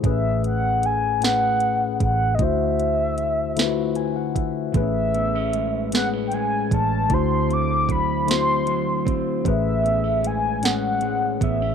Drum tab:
HH |xxxxxx|xxxxxx|xxxxxx|xxxxxx|
SD |---o--|---o--|---o--|---o--|
BD |o----o|o----o|o----o|o-o--o|

HH |xxxxxx|
SD |---o--|
BD |o----o|